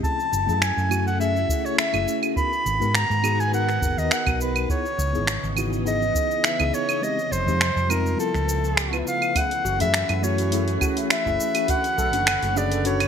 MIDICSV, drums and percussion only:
0, 0, Header, 1, 2, 480
1, 0, Start_track
1, 0, Tempo, 582524
1, 29, Time_signature, 4, 2, 24, 8
1, 10775, End_track
2, 0, Start_track
2, 0, Title_t, "Drums"
2, 28, Note_on_c, 9, 36, 108
2, 35, Note_on_c, 9, 82, 40
2, 110, Note_off_c, 9, 36, 0
2, 118, Note_off_c, 9, 82, 0
2, 163, Note_on_c, 9, 82, 22
2, 246, Note_off_c, 9, 82, 0
2, 274, Note_on_c, 9, 82, 71
2, 356, Note_off_c, 9, 82, 0
2, 404, Note_on_c, 9, 82, 33
2, 486, Note_off_c, 9, 82, 0
2, 509, Note_on_c, 9, 26, 89
2, 517, Note_on_c, 9, 82, 46
2, 592, Note_off_c, 9, 26, 0
2, 599, Note_off_c, 9, 82, 0
2, 645, Note_on_c, 9, 82, 21
2, 727, Note_off_c, 9, 82, 0
2, 750, Note_on_c, 9, 75, 68
2, 757, Note_on_c, 9, 82, 66
2, 832, Note_off_c, 9, 75, 0
2, 839, Note_off_c, 9, 82, 0
2, 885, Note_on_c, 9, 82, 30
2, 968, Note_off_c, 9, 82, 0
2, 996, Note_on_c, 9, 82, 42
2, 1079, Note_off_c, 9, 82, 0
2, 1124, Note_on_c, 9, 82, 21
2, 1206, Note_off_c, 9, 82, 0
2, 1229, Note_on_c, 9, 36, 106
2, 1239, Note_on_c, 9, 82, 76
2, 1311, Note_off_c, 9, 36, 0
2, 1321, Note_off_c, 9, 82, 0
2, 1367, Note_on_c, 9, 82, 34
2, 1449, Note_off_c, 9, 82, 0
2, 1471, Note_on_c, 9, 26, 92
2, 1478, Note_on_c, 9, 82, 42
2, 1553, Note_off_c, 9, 26, 0
2, 1560, Note_off_c, 9, 82, 0
2, 1596, Note_on_c, 9, 75, 75
2, 1603, Note_on_c, 9, 82, 20
2, 1679, Note_off_c, 9, 75, 0
2, 1686, Note_off_c, 9, 82, 0
2, 1714, Note_on_c, 9, 82, 72
2, 1797, Note_off_c, 9, 82, 0
2, 1835, Note_on_c, 9, 75, 75
2, 1842, Note_on_c, 9, 82, 30
2, 1918, Note_off_c, 9, 75, 0
2, 1925, Note_off_c, 9, 82, 0
2, 1948, Note_on_c, 9, 36, 100
2, 1955, Note_on_c, 9, 82, 36
2, 2031, Note_off_c, 9, 36, 0
2, 2038, Note_off_c, 9, 82, 0
2, 2084, Note_on_c, 9, 82, 21
2, 2166, Note_off_c, 9, 82, 0
2, 2194, Note_on_c, 9, 82, 73
2, 2276, Note_off_c, 9, 82, 0
2, 2322, Note_on_c, 9, 82, 31
2, 2405, Note_off_c, 9, 82, 0
2, 2427, Note_on_c, 9, 26, 97
2, 2434, Note_on_c, 9, 82, 41
2, 2510, Note_off_c, 9, 26, 0
2, 2517, Note_off_c, 9, 82, 0
2, 2564, Note_on_c, 9, 82, 21
2, 2647, Note_off_c, 9, 82, 0
2, 2668, Note_on_c, 9, 75, 69
2, 2675, Note_on_c, 9, 82, 66
2, 2750, Note_off_c, 9, 75, 0
2, 2757, Note_off_c, 9, 82, 0
2, 2803, Note_on_c, 9, 82, 31
2, 2886, Note_off_c, 9, 82, 0
2, 2915, Note_on_c, 9, 82, 44
2, 2997, Note_off_c, 9, 82, 0
2, 3037, Note_on_c, 9, 26, 29
2, 3044, Note_on_c, 9, 82, 19
2, 3120, Note_off_c, 9, 26, 0
2, 3127, Note_off_c, 9, 82, 0
2, 3148, Note_on_c, 9, 36, 99
2, 3154, Note_on_c, 9, 82, 72
2, 3230, Note_off_c, 9, 36, 0
2, 3236, Note_off_c, 9, 82, 0
2, 3283, Note_on_c, 9, 82, 30
2, 3365, Note_off_c, 9, 82, 0
2, 3387, Note_on_c, 9, 26, 87
2, 3394, Note_on_c, 9, 82, 41
2, 3470, Note_off_c, 9, 26, 0
2, 3477, Note_off_c, 9, 82, 0
2, 3514, Note_on_c, 9, 75, 81
2, 3515, Note_on_c, 9, 36, 89
2, 3522, Note_on_c, 9, 82, 22
2, 3597, Note_off_c, 9, 75, 0
2, 3598, Note_off_c, 9, 36, 0
2, 3604, Note_off_c, 9, 82, 0
2, 3633, Note_on_c, 9, 82, 70
2, 3715, Note_off_c, 9, 82, 0
2, 3755, Note_on_c, 9, 75, 78
2, 3762, Note_on_c, 9, 82, 31
2, 3837, Note_off_c, 9, 75, 0
2, 3844, Note_off_c, 9, 82, 0
2, 3868, Note_on_c, 9, 36, 105
2, 3874, Note_on_c, 9, 82, 36
2, 3950, Note_off_c, 9, 36, 0
2, 3956, Note_off_c, 9, 82, 0
2, 4002, Note_on_c, 9, 82, 21
2, 4084, Note_off_c, 9, 82, 0
2, 4114, Note_on_c, 9, 82, 75
2, 4196, Note_off_c, 9, 82, 0
2, 4242, Note_on_c, 9, 82, 30
2, 4325, Note_off_c, 9, 82, 0
2, 4346, Note_on_c, 9, 26, 99
2, 4354, Note_on_c, 9, 82, 45
2, 4429, Note_off_c, 9, 26, 0
2, 4436, Note_off_c, 9, 82, 0
2, 4482, Note_on_c, 9, 82, 21
2, 4565, Note_off_c, 9, 82, 0
2, 4586, Note_on_c, 9, 75, 78
2, 4593, Note_on_c, 9, 82, 69
2, 4668, Note_off_c, 9, 75, 0
2, 4675, Note_off_c, 9, 82, 0
2, 4722, Note_on_c, 9, 82, 29
2, 4804, Note_off_c, 9, 82, 0
2, 4835, Note_on_c, 9, 82, 43
2, 4917, Note_off_c, 9, 82, 0
2, 4962, Note_on_c, 9, 82, 20
2, 5044, Note_off_c, 9, 82, 0
2, 5067, Note_on_c, 9, 36, 95
2, 5074, Note_on_c, 9, 82, 71
2, 5150, Note_off_c, 9, 36, 0
2, 5156, Note_off_c, 9, 82, 0
2, 5200, Note_on_c, 9, 82, 33
2, 5283, Note_off_c, 9, 82, 0
2, 5306, Note_on_c, 9, 26, 91
2, 5313, Note_on_c, 9, 82, 43
2, 5388, Note_off_c, 9, 26, 0
2, 5396, Note_off_c, 9, 82, 0
2, 5435, Note_on_c, 9, 75, 82
2, 5442, Note_on_c, 9, 82, 22
2, 5518, Note_off_c, 9, 75, 0
2, 5525, Note_off_c, 9, 82, 0
2, 5554, Note_on_c, 9, 82, 66
2, 5637, Note_off_c, 9, 82, 0
2, 5676, Note_on_c, 9, 75, 78
2, 5683, Note_on_c, 9, 82, 30
2, 5758, Note_off_c, 9, 75, 0
2, 5765, Note_off_c, 9, 82, 0
2, 5797, Note_on_c, 9, 82, 41
2, 5879, Note_off_c, 9, 82, 0
2, 5924, Note_on_c, 9, 82, 21
2, 6006, Note_off_c, 9, 82, 0
2, 6037, Note_on_c, 9, 82, 69
2, 6120, Note_off_c, 9, 82, 0
2, 6165, Note_on_c, 9, 82, 33
2, 6247, Note_off_c, 9, 82, 0
2, 6270, Note_on_c, 9, 26, 97
2, 6277, Note_on_c, 9, 82, 42
2, 6352, Note_off_c, 9, 26, 0
2, 6359, Note_off_c, 9, 82, 0
2, 6404, Note_on_c, 9, 82, 21
2, 6486, Note_off_c, 9, 82, 0
2, 6510, Note_on_c, 9, 75, 79
2, 6517, Note_on_c, 9, 82, 69
2, 6592, Note_off_c, 9, 75, 0
2, 6599, Note_off_c, 9, 82, 0
2, 6644, Note_on_c, 9, 82, 30
2, 6726, Note_off_c, 9, 82, 0
2, 6755, Note_on_c, 9, 82, 43
2, 6838, Note_off_c, 9, 82, 0
2, 6876, Note_on_c, 9, 26, 31
2, 6883, Note_on_c, 9, 82, 21
2, 6959, Note_off_c, 9, 26, 0
2, 6966, Note_off_c, 9, 82, 0
2, 6994, Note_on_c, 9, 82, 78
2, 7077, Note_off_c, 9, 82, 0
2, 7122, Note_on_c, 9, 82, 33
2, 7204, Note_off_c, 9, 82, 0
2, 7230, Note_on_c, 9, 26, 101
2, 7237, Note_on_c, 9, 82, 43
2, 7312, Note_off_c, 9, 26, 0
2, 7319, Note_off_c, 9, 82, 0
2, 7357, Note_on_c, 9, 75, 80
2, 7364, Note_on_c, 9, 82, 22
2, 7440, Note_off_c, 9, 75, 0
2, 7447, Note_off_c, 9, 82, 0
2, 7476, Note_on_c, 9, 82, 73
2, 7558, Note_off_c, 9, 82, 0
2, 7597, Note_on_c, 9, 75, 73
2, 7604, Note_on_c, 9, 82, 30
2, 7679, Note_off_c, 9, 75, 0
2, 7686, Note_off_c, 9, 82, 0
2, 7709, Note_on_c, 9, 36, 113
2, 7710, Note_on_c, 9, 46, 54
2, 7710, Note_on_c, 9, 75, 75
2, 7717, Note_on_c, 9, 82, 46
2, 7792, Note_off_c, 9, 36, 0
2, 7793, Note_off_c, 9, 46, 0
2, 7793, Note_off_c, 9, 75, 0
2, 7800, Note_off_c, 9, 82, 0
2, 7838, Note_on_c, 9, 46, 35
2, 7845, Note_on_c, 9, 82, 23
2, 7921, Note_off_c, 9, 46, 0
2, 7928, Note_off_c, 9, 82, 0
2, 7958, Note_on_c, 9, 82, 79
2, 8040, Note_off_c, 9, 82, 0
2, 8077, Note_on_c, 9, 46, 47
2, 8084, Note_on_c, 9, 82, 34
2, 8159, Note_off_c, 9, 46, 0
2, 8167, Note_off_c, 9, 82, 0
2, 8188, Note_on_c, 9, 26, 108
2, 8188, Note_on_c, 9, 46, 58
2, 8195, Note_on_c, 9, 82, 46
2, 8271, Note_off_c, 9, 26, 0
2, 8271, Note_off_c, 9, 46, 0
2, 8278, Note_off_c, 9, 82, 0
2, 8315, Note_on_c, 9, 46, 34
2, 8315, Note_on_c, 9, 75, 81
2, 8322, Note_on_c, 9, 82, 23
2, 8398, Note_off_c, 9, 46, 0
2, 8398, Note_off_c, 9, 75, 0
2, 8405, Note_off_c, 9, 82, 0
2, 8435, Note_on_c, 9, 82, 73
2, 8518, Note_off_c, 9, 82, 0
2, 8556, Note_on_c, 9, 46, 43
2, 8563, Note_on_c, 9, 82, 32
2, 8639, Note_off_c, 9, 46, 0
2, 8646, Note_off_c, 9, 82, 0
2, 8669, Note_on_c, 9, 46, 60
2, 8676, Note_on_c, 9, 82, 45
2, 8751, Note_off_c, 9, 46, 0
2, 8758, Note_off_c, 9, 82, 0
2, 8797, Note_on_c, 9, 46, 34
2, 8805, Note_on_c, 9, 82, 22
2, 8880, Note_off_c, 9, 46, 0
2, 8887, Note_off_c, 9, 82, 0
2, 8909, Note_on_c, 9, 75, 79
2, 8910, Note_on_c, 9, 36, 108
2, 8916, Note_on_c, 9, 82, 83
2, 8991, Note_off_c, 9, 75, 0
2, 8993, Note_off_c, 9, 36, 0
2, 8998, Note_off_c, 9, 82, 0
2, 9038, Note_on_c, 9, 46, 44
2, 9045, Note_on_c, 9, 82, 35
2, 9120, Note_off_c, 9, 46, 0
2, 9127, Note_off_c, 9, 82, 0
2, 9150, Note_on_c, 9, 26, 105
2, 9150, Note_on_c, 9, 46, 60
2, 9157, Note_on_c, 9, 82, 42
2, 9232, Note_off_c, 9, 26, 0
2, 9232, Note_off_c, 9, 46, 0
2, 9240, Note_off_c, 9, 82, 0
2, 9278, Note_on_c, 9, 36, 57
2, 9285, Note_on_c, 9, 82, 23
2, 9361, Note_off_c, 9, 36, 0
2, 9367, Note_off_c, 9, 82, 0
2, 9396, Note_on_c, 9, 82, 78
2, 9478, Note_off_c, 9, 82, 0
2, 9515, Note_on_c, 9, 46, 49
2, 9515, Note_on_c, 9, 75, 78
2, 9522, Note_on_c, 9, 82, 34
2, 9597, Note_off_c, 9, 46, 0
2, 9597, Note_off_c, 9, 75, 0
2, 9604, Note_off_c, 9, 82, 0
2, 9627, Note_on_c, 9, 46, 55
2, 9630, Note_on_c, 9, 36, 113
2, 9634, Note_on_c, 9, 82, 45
2, 9709, Note_off_c, 9, 46, 0
2, 9713, Note_off_c, 9, 36, 0
2, 9716, Note_off_c, 9, 82, 0
2, 9757, Note_on_c, 9, 46, 31
2, 9764, Note_on_c, 9, 82, 25
2, 9840, Note_off_c, 9, 46, 0
2, 9847, Note_off_c, 9, 82, 0
2, 9875, Note_on_c, 9, 82, 81
2, 9958, Note_off_c, 9, 82, 0
2, 9996, Note_on_c, 9, 46, 45
2, 10003, Note_on_c, 9, 82, 34
2, 10078, Note_off_c, 9, 46, 0
2, 10086, Note_off_c, 9, 82, 0
2, 10109, Note_on_c, 9, 26, 107
2, 10109, Note_on_c, 9, 46, 55
2, 10109, Note_on_c, 9, 75, 81
2, 10116, Note_on_c, 9, 82, 48
2, 10192, Note_off_c, 9, 26, 0
2, 10192, Note_off_c, 9, 46, 0
2, 10192, Note_off_c, 9, 75, 0
2, 10199, Note_off_c, 9, 82, 0
2, 10239, Note_on_c, 9, 46, 32
2, 10246, Note_on_c, 9, 82, 24
2, 10321, Note_off_c, 9, 46, 0
2, 10328, Note_off_c, 9, 82, 0
2, 10355, Note_on_c, 9, 82, 71
2, 10437, Note_off_c, 9, 82, 0
2, 10478, Note_on_c, 9, 46, 45
2, 10485, Note_on_c, 9, 82, 34
2, 10560, Note_off_c, 9, 46, 0
2, 10567, Note_off_c, 9, 82, 0
2, 10588, Note_on_c, 9, 46, 58
2, 10596, Note_on_c, 9, 82, 47
2, 10671, Note_off_c, 9, 46, 0
2, 10678, Note_off_c, 9, 82, 0
2, 10715, Note_on_c, 9, 26, 31
2, 10715, Note_on_c, 9, 46, 32
2, 10715, Note_on_c, 9, 75, 77
2, 10722, Note_on_c, 9, 82, 23
2, 10775, Note_off_c, 9, 26, 0
2, 10775, Note_off_c, 9, 46, 0
2, 10775, Note_off_c, 9, 75, 0
2, 10775, Note_off_c, 9, 82, 0
2, 10775, End_track
0, 0, End_of_file